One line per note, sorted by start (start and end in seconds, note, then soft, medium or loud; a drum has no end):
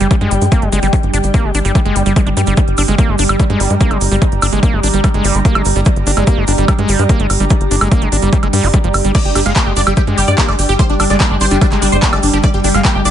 0.00 0.08 G1 medium
0.00 9.14 G3 medium
0.00 0.08 G3 medium
0.00 13.11 D4 medium
0.00 13.11 G4 medium
0.00 13.11 D5 medium
0.00 3.01 G5 medium
0.00 closed hi-hat medium
0.00 shaker medium
0.11 0.16 G3 loud
0.11 kick loud
0.11 closed hi-hat medium
0.11 shaker soft
0.21 0.28 G2 medium
0.21 0.33 G#3 loud
0.21 closed hi-hat soft
0.31 0.39 G1 loud
0.31 0.43 G3 medium
0.31 closed hi-hat medium
0.31 shaker medium
0.42 0.49 G2 medium
0.42 0.46 G#3 medium
0.42 closed hi-hat medium
0.42 shaker medium
0.52 0.64 A#3 medium
0.52 kick loud
0.52 closed hi-hat medium
0.52 shaker soft
0.62 0.70 G1 medium
0.62 0.69 G#3 medium
0.62 closed hi-hat soft
0.72 0.80 G1 loud
0.72 0.80 G#3 loud
0.72 closed hi-hat medium
0.72 shaker medium
0.82 0.90 G1 medium
0.82 0.87 G3 medium
0.82 closed hi-hat medium
0.82 shaker medium
0.93 0.96 G3 medium
0.93 kick loud
0.93 closed hi-hat medium
0.93 shaker soft
1.03 1.11 G1 medium
1.03 closed hi-hat soft
1.13 1.21 G1 loud
1.13 1.18 D4 medium
1.13 closed hi-hat medium
1.13 shaker medium
1.23 1.31 G1 medium
1.23 closed hi-hat soft
1.23 shaker medium
1.34 1.46 A#3 medium
1.34 kick loud
1.34 closed hi-hat medium
1.34 shaker soft
1.44 1.52 G1 medium
1.44 1.51 G#3 medium
1.55 1.62 G#1 loud
1.55 1.59 D4 medium
1.55 closed hi-hat medium
1.55 shaker loud
1.65 1.72 G1 medium
1.65 1.72 G3 medium
1.65 closed hi-hat medium
1.65 shaker medium
1.75 1.80 G3 medium
1.75 kick loud
1.75 closed hi-hat medium
1.75 shaker soft
1.85 1.93 G1 medium
1.85 1.97 G#3 loud
1.85 closed hi-hat soft
1.96 2.03 G1 medium
1.96 2.03 G3 medium
1.96 closed hi-hat medium
1.96 shaker medium
2.06 2.13 G1 medium
2.06 2.13 G3 medium
2.06 closed hi-hat medium
2.06 shaker medium
2.16 2.21 G#3 medium
2.16 kick loud
2.16 closed hi-hat medium
2.16 shaker soft
2.27 2.34 G1 medium
2.27 2.29 D4 medium
2.27 closed hi-hat soft
2.37 2.44 G2 loud
2.37 2.42 G3 medium
2.37 closed hi-hat medium
2.37 shaker medium
2.46 2.54 G1 medium
2.46 2.54 G3 medium
2.46 closed hi-hat soft
2.46 shaker soft
2.57 2.60 G3 medium
2.57 kick loud
2.57 closed hi-hat medium
2.57 shaker soft
2.68 2.75 G1 medium
2.68 closed hi-hat soft
2.77 2.85 G1 loud
2.77 2.83 D4 medium
2.77 open hi-hat loud
2.77 high woodblock soft
2.77 shaker loud
2.88 2.96 G1 medium
2.88 2.95 G#3 loud
2.88 closed hi-hat soft
2.88 shaker soft
2.98 3.10 A#3 medium
2.98 9.59 A#5 medium
2.98 kick loud
2.98 closed hi-hat medium
2.98 shaker soft
3.09 3.16 G1 medium
3.09 3.16 G#3 medium
3.18 3.26 G1 loud
3.18 3.24 D4 medium
3.18 open hi-hat loud
3.18 shaker medium
3.29 3.37 G1 medium
3.29 3.36 G3 medium
3.29 closed hi-hat medium
3.29 high woodblock medium
3.29 shaker medium
3.40 3.44 G3 loud
3.40 kick loud
3.40 closed hi-hat medium
3.40 shaker soft
3.50 3.57 G2 medium
3.50 3.62 G#3 loud
3.50 closed hi-hat soft
3.60 3.67 G1 loud
3.60 3.72 G3 medium
3.60 open hi-hat loud
3.60 shaker medium
3.70 3.78 G2 medium
3.70 3.75 G#3 medium
3.70 closed hi-hat medium
3.70 shaker soft
3.80 3.92 A#3 medium
3.80 kick loud
3.80 closed hi-hat medium
3.80 shaker soft
3.91 3.98 G1 medium
3.91 3.98 G#3 medium
3.91 closed hi-hat soft
3.91 high woodblock soft
4.01 4.09 G1 medium
4.01 open hi-hat loud
4.01 shaker medium
4.11 4.19 G1 medium
4.11 4.16 G3 medium
4.11 closed hi-hat soft
4.11 shaker medium
4.22 4.25 G3 medium
4.22 kick loud
4.22 closed hi-hat medium
4.22 shaker soft
4.32 4.39 G1 medium
4.32 closed hi-hat soft
4.42 4.50 G1 loud
4.42 4.47 D4 medium
4.42 open hi-hat loud
4.42 high woodblock medium
4.42 shaker medium
4.52 4.60 G1 medium
4.52 4.60 G#3 loud
4.52 closed hi-hat soft
4.52 shaker medium
4.63 4.75 A#3 medium
4.63 kick loud
4.63 closed hi-hat medium
4.63 shaker soft
4.73 4.80 G1 medium
4.73 4.80 G#3 medium
4.83 4.91 G#1 loud
4.83 4.88 D4 medium
4.83 open hi-hat loud
4.83 shaker medium
4.94 5.01 G1 medium
4.94 5.01 G3 medium
4.94 closed hi-hat medium
4.94 shaker soft
5.04 5.09 G3 medium
5.04 kick loud
5.04 closed hi-hat medium
5.04 high woodblock soft
5.04 shaker soft
5.14 5.22 G1 medium
5.14 5.26 G#3 loud
5.14 closed hi-hat soft
5.24 5.32 G1 loud
5.24 5.36 G3 medium
5.24 open hi-hat loud
5.24 shaker medium
5.35 5.42 G1 medium
5.35 5.40 G#3 medium
5.35 closed hi-hat medium
5.35 shaker medium
5.45 5.57 A#3 medium
5.45 kick loud
5.45 closed hi-hat medium
5.45 shaker soft
5.55 5.63 G1 medium
5.55 5.62 G#3 medium
5.55 closed hi-hat soft
5.55 high woodblock medium
5.65 5.73 G1 loud
5.65 open hi-hat medium
5.65 shaker medium
5.76 5.83 G1 medium
5.76 5.81 G3 medium
5.76 closed hi-hat soft
5.76 shaker soft
5.85 5.89 G3 medium
5.85 kick loud
5.85 closed hi-hat medium
5.85 shaker soft
5.96 6.04 G1 medium
5.96 closed hi-hat soft
6.07 6.14 G1 loud
6.07 6.11 D4 medium
6.07 open hi-hat loud
6.07 shaker medium
6.17 6.24 G1 medium
6.17 6.24 G#3 loud
6.17 closed hi-hat medium
6.17 high woodblock soft
6.17 shaker soft
6.27 6.39 A#3 medium
6.27 kick loud
6.27 closed hi-hat medium
6.27 shaker soft
6.37 6.45 G1 medium
6.37 6.45 G#3 medium
6.47 6.55 G1 loud
6.47 6.53 D4 medium
6.47 open hi-hat loud
6.47 shaker medium
6.58 6.65 G1 medium
6.58 6.65 G3 medium
6.58 closed hi-hat medium
6.58 shaker soft
6.68 6.73 G3 medium
6.68 kick loud
6.68 closed hi-hat medium
6.68 high woodblock medium
6.68 shaker soft
6.79 6.86 G2 medium
6.79 6.90 G#3 loud
6.79 closed hi-hat soft
6.89 6.96 G1 loud
6.89 7.01 G3 medium
6.89 open hi-hat loud
6.89 shaker medium
6.99 7.06 G2 medium
6.99 7.04 G#3 medium
6.99 closed hi-hat medium
6.99 shaker soft
7.09 7.21 A#3 medium
7.09 kick loud
7.09 closed hi-hat medium
7.09 shaker soft
7.20 7.27 G1 medium
7.20 7.27 G#3 medium
7.20 closed hi-hat soft
7.30 7.37 G1 medium
7.30 open hi-hat medium
7.30 high woodblock soft
7.30 shaker medium
7.40 7.48 G1 medium
7.40 7.45 G3 medium
7.40 closed hi-hat soft
7.40 shaker soft
7.50 7.53 G3 medium
7.50 kick loud
7.50 closed hi-hat medium
7.50 shaker soft
7.61 7.68 G1 medium
7.61 closed hi-hat soft
7.71 7.78 G1 loud
7.71 7.76 D4 medium
7.71 open hi-hat loud
7.71 shaker medium
7.81 7.89 G1 medium
7.81 7.88 G#3 loud
7.81 closed hi-hat medium
7.81 high woodblock medium
7.81 shaker medium
7.92 8.03 A#3 medium
7.92 kick loud
7.92 closed hi-hat medium
7.92 shaker soft
8.02 8.09 G1 medium
8.02 8.09 G#3 medium
8.02 closed hi-hat soft
8.12 8.20 G#1 loud
8.12 8.17 D4 medium
8.12 open hi-hat loud
8.12 shaker medium
8.22 8.30 G1 medium
8.22 8.30 G3 medium
8.22 closed hi-hat medium
8.22 shaker soft
8.33 8.37 G3 loud
8.33 kick loud
8.33 closed hi-hat medium
8.33 shaker soft
8.43 8.50 G1 medium
8.43 8.48 G#3 loud
8.43 closed hi-hat soft
8.43 high woodblock soft
8.53 8.61 G2 loud
8.53 8.65 G3 loud
8.53 open hi-hat loud
8.53 shaker medium
8.63 8.71 G1 medium
8.63 8.68 G4 medium
8.63 open hi-hat medium
8.63 shaker medium
8.73 8.79 G3 medium
8.73 kick loud
8.73 closed hi-hat medium
8.73 shaker soft
8.84 8.91 G1 medium
8.84 8.89 F3 medium
8.84 closed hi-hat soft
8.94 9.02 G1 loud
8.94 open hi-hat medium
8.94 high woodblock medium
8.94 shaker medium
9.05 9.12 G1 medium
9.05 9.12 G3 medium
9.05 closed hi-hat medium
9.05 shaker medium
9.15 9.18 G3 medium
9.15 13.11 G3 medium
9.15 9.19 D5 loud
9.15 kick loud
9.15 closed hi-hat medium
9.15 crash medium
9.15 shaker soft
9.25 9.33 G1 medium
9.25 9.30 G4 medium
9.25 closed hi-hat soft
9.35 9.43 G1 loud
9.35 9.40 D4 medium
9.35 9.40 G4 medium
9.35 open hi-hat loud
9.35 high woodblock soft
9.35 shaker medium
9.46 9.53 G1 medium
9.46 9.53 G#3 loud
9.46 9.50 F5 medium
9.46 closed hi-hat medium
9.46 shaker soft
9.56 9.68 A#3 medium
9.56 9.61 G4 medium
9.56 13.11 G5 medium
9.56 kick loud
9.56 clap loud
9.56 closed hi-hat medium
9.56 shaker soft
9.66 9.74 G1 medium
9.66 9.73 G#3 medium
9.66 9.71 G4 medium
9.76 9.84 G1 loud
9.76 9.81 D4 medium
9.76 9.81 D5 medium
9.76 open hi-hat loud
9.76 shaker medium
9.87 9.94 G1 medium
9.87 9.94 G3 medium
9.87 9.91 G4 medium
9.87 closed hi-hat medium
9.87 high woodblock medium
9.87 shaker medium
9.96 10.02 G3 loud
9.96 10.02 G4 medium
9.96 kick loud
9.96 closed hi-hat medium
9.96 shaker soft
10.07 10.15 G2 medium
10.07 10.19 G#3 loud
10.07 closed hi-hat soft
10.18 10.25 G1 loud
10.18 10.29 G3 medium
10.18 10.22 G4 medium
10.18 open hi-hat loud
10.18 shaker medium
10.27 10.35 G2 medium
10.27 10.33 G#3 medium
10.27 10.32 D5 medium
10.27 closed hi-hat medium
10.27 shaker medium
10.38 10.50 A#3 medium
10.38 10.43 G4 medium
10.38 kick loud
10.38 clap loud
10.38 closed hi-hat medium
10.38 shaker soft
10.48 10.56 G1 medium
10.48 10.56 G#3 medium
10.48 10.53 D5 loud
10.48 closed hi-hat soft
10.48 high woodblock soft
10.59 10.66 G1 loud
10.59 10.63 G4 medium
10.59 open hi-hat loud
10.59 shaker medium
10.69 10.76 G1 medium
10.69 10.74 G4 medium
10.69 closed hi-hat medium
10.69 shaker medium
10.79 10.82 G3 medium
10.79 10.84 C5 loud
10.79 kick loud
10.79 closed hi-hat medium
10.79 shaker soft
10.90 10.97 G1 medium
10.90 10.94 D4 medium
10.90 closed hi-hat soft
11.00 11.07 G1 loud
11.00 11.05 D4 medium
11.00 11.04 D4 medium
11.00 open hi-hat loud
11.00 high woodblock medium
11.00 shaker loud
11.10 11.17 G1 medium
11.10 11.17 G#3 loud
11.10 11.15 D5 medium
11.10 shaker medium
11.20 11.32 A#3 medium
11.20 11.25 D4 medium
11.20 kick loud
11.20 clap loud
11.20 closed hi-hat medium
11.20 shaker soft
11.31 11.38 G1 medium
11.31 11.38 G#3 medium
11.31 11.35 D4 medium
11.40 11.48 G#1 loud
11.40 11.46 D4 medium
11.40 11.45 C5 loud
11.40 open hi-hat loud
11.40 shaker loud
11.51 11.59 G1 medium
11.51 11.58 G3 medium
11.51 11.56 D4 medium
11.51 closed hi-hat medium
11.51 shaker medium
11.61 11.66 G3 loud
11.61 11.66 D4 medium
11.61 kick loud
11.61 closed hi-hat medium
11.61 high woodblock soft
11.61 shaker soft
11.72 11.79 G1 medium
11.72 11.84 G#3 loud
11.72 clap soft
11.72 closed hi-hat soft
11.82 11.89 G1 medium
11.82 11.94 G3 medium
11.82 11.87 D4 medium
11.82 open hi-hat loud
11.82 shaker medium
11.92 12.00 G1 medium
11.92 11.97 G#3 medium
11.92 11.97 C5 medium
11.92 closed hi-hat medium
11.92 shaker medium
12.03 12.14 A#3 medium
12.03 12.07 D4 medium
12.03 kick loud
12.03 clap loud
12.03 closed hi-hat medium
12.03 shaker soft
12.13 12.20 G1 medium
12.13 12.20 G#3 medium
12.13 12.17 D5 loud
12.13 closed hi-hat soft
12.13 high woodblock medium
12.23 12.30 G1 loud
12.23 12.28 D4 medium
12.23 open hi-hat loud
12.23 shaker medium
12.33 12.41 G1 medium
12.33 12.38 D4 medium
12.33 12.38 G4 medium
12.33 closed hi-hat medium
12.33 shaker soft
12.43 12.47 G3 medium
12.43 12.48 D5 loud
12.43 kick loud
12.43 closed hi-hat medium
12.43 shaker soft
12.54 12.61 G1 medium
12.54 12.59 G4 medium
12.54 closed hi-hat soft
12.64 12.72 G1 loud
12.64 12.69 D4 medium
12.64 12.69 G4 medium
12.64 open hi-hat loud
12.64 shaker medium
12.74 12.82 G1 medium
12.74 12.82 G#3 loud
12.74 12.79 F5 medium
12.74 closed hi-hat soft
12.74 high woodblock soft
12.74 shaker soft
12.85 12.97 A#3 medium
12.85 12.89 G4 medium
12.85 kick loud
12.85 clap loud
12.85 closed hi-hat medium
12.85 shaker soft
12.95 13.02 G1 medium
12.95 13.02 G#3 medium
12.95 13.00 G4 medium
13.05 13.11 G1 loud
13.05 13.10 D4 medium
13.05 13.10 D5 medium
13.05 open hi-hat loud
13.05 shaker loud